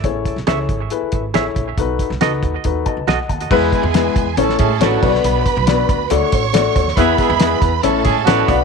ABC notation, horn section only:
X:1
M:4/4
L:1/16
Q:1/4=139
K:Emix
V:1 name="Horn section"
z16 | z16 | [B,EGB]2 [G,B,EG]4 z2 [A,CEA]2 [G,CEG]2 [F,B,DF]3 z | z16 |
[B,EGB]2 [G,B,EG]4 z2 [A,CEA]2 [G,CEG]2 [F,B,DF]3 z |]